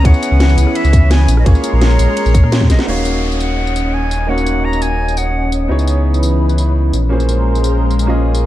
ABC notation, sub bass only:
X:1
M:4/4
L:1/16
Q:1/4=170
K:Ebm
V:1 name="Sub bass" clef=bass
D,, z2 D,,3 D,, z2 D,,2 D,,3 B,,,2 | B,,, z2 B,,,3 B,,, z2 B,,,2 B,,3 B,,, z | E,,,16- | E,,,16 |
D,,12- D,,2 B,,,2- | B,,,16 |]